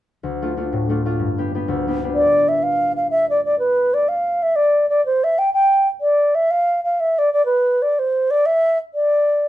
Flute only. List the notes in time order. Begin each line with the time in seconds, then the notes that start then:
2.15 D5
2.48 E5
2.63 F5
2.96 F5
3.11 E5
3.30 D5
3.45 D5
3.59 B4
3.94 D5
4.09 F5
4.43 E5
4.56 D5
4.89 D5
5.06 C5
5.24 E5
5.39 G5
5.54 G5
6.01 D5
6.35 E5
6.51 F5
6.84 F5
7.00 E5
7.19 D5
7.33 D5
7.46 B4
7.82 D5
7.99 C5
8.31 D5
8.46 E5
8.94 D5